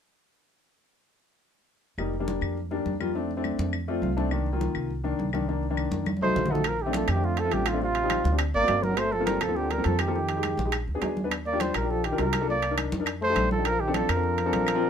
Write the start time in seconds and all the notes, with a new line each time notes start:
1.98 F1 G3 A#3 D#4, high conga, claves
2.14 high conga
2.20 G3 A#3 D4
2.28 high conga
2.41 F2, claves
2.57 high conga
2.71 G3 A#3 D4, high conga
2.86 F2, high conga
3.00 G3 A#3 F4, high conga, claves
3.15 A3 C4 D4, high conga
3.31 high conga
3.37 A3 C4 D4
3.44 high conga, claves
3.59 F2, high conga
3.73 high conga, claves
3.88 A3 C4 F4 D5, high conga
4.02 C2 F5, high conga
4.16 A3 C4 D4 A5, high conga
4.31 D#3 A#3 D4, high conga, claves
4.46 high conga
4.53 D#3 A#3 F4
4.61 high conga
4.75 C2, claves
4.91 high conga
5.04 D#3 A#3 D4, high conga
5.19 C2, high conga
5.33 D#3 A#3 D4, high conga, claves
5.48 D#3 A#3 D4, high conga
5.63 high conga
5.70 D#3 A#3 D4
5.77 high conga, claves
5.91 F2, high conga
6.06 high conga, claves
6.17 high conga
6.21 C2 F#3 A3 D#4 C5 D#5
6.35 A#1 F5, low conga
6.46 F#3, low conga
6.50 F3 A3 D#4 A4 F#5
6.55 low conga
6.64 F3 A#4, high timbale, claves
6.79 D#3 G4, high conga
6.86 A3 C4 D4
6.93 F3 A4, high conga, high timbale
7.08 F2 D#3 G4, high timbale, claves
7.15 A3 C4 D4
7.24 D3 F4, high conga
7.37 F3 A4, high conga, high timbale
7.45 A3 C4 F4
7.51 A1 D3 G4, high conga, high timbale
7.66 D3 F4, high conga, high timbale, claves
7.73 A3 C4 D4
7.82 C3 F4, high conga
7.95 high conga, high timbale
8.03 G3 C4 D#4
8.10 high conga, high timbale, claves
8.24 D2, high conga
8.32 G3 C4 D4
8.39 high conga, high timbale, claves
8.54 G#1 A#3 D5, high conga
8.62 A#3 C4 F#4
8.68 G1, high conga, high timbale, low timbale
8.83 F#3 A#4, high conga
8.91 A#3 C4 F#4
8.97 A3 C5, high conga, high timbale, claves
9.12 F3 A4, high conga
9.20 A#3 C4 F4 A4
9.26 G3 A#4, high conga, high timbale
9.41 D2 F3 A4, high timbale, claves
9.48 A#3 C4 F4 A4
9.56 D3 G4, high conga
9.71 G3 A#4, high conga, high timbale
9.77 A#3 C4 F4 A4
9.84 F2 F3 A4, high conga, high timbale
9.99 D#3 G4, high timbale, claves
10.07 A#3 C4 F4 A4
10.15 D#3 G4, high conga
10.29 high conga, high timbale
10.36 G#3 D#4 G4
10.43 high conga, high timbale, claves
10.57 A#1, high conga
10.65 G#3 D#4 G4
10.72 high timbale, claves
10.88 D2, high conga
10.95 B3 D4 G#4
11.02 D#2 G#5, high conga, high timbale, low timbale
11.17 high conga
11.24 B3 D4 B4
11.31 high conga, high timbale, claves
11.46 A#3 D5, high conga
11.53 D4 F4 G4
11.60 G3 C5, high conga, high timbale
11.74 A#1 G3 A#4, high timbale, claves
11.82 D4 F4 G4
11.90 F3 A4, high conga
12.04 D#3 G4, high conga, high timbale
12.12 D4 F4 A#4
12.18 C2 G3 A#4, high conga, high timbale, low timbale
12.33 high conga, high timbale, claves
12.41 D4 F4 A4
12.49 A#3 D5, high conga
12.62 high conga, high timbale
12.71 D4 D#4 A#4
12.78 high conga, high timbale, claves
12.92 F2, high conga
13.00 D4 D#4 A#4
13.06 high conga, high timbale, claves
13.22 A3 C5, high conga
13.29 D4 D#4 G4 A4
13.36 A#1, high conga, high timbale
13.51 F3 A4, high conga
13.58 D4 D#4 G4 A4
13.65 F3 A#4, high conga, high timbale, claves
13.80 D#3 G4, high conga
13.87 C4 D4 A4
13.94 F3 A4, high conga, high timbale
14.09 F2 F3 A#4, high timbale, claves
14.16 C4 D4 A4
14.23 high conga
14.38 high conga, high timbale
14.46 C4 D4 A4
14.53 A#1, high conga, high timbale
14.67 high timbale, claves
14.75 C4 D4 F4
14.82 high conga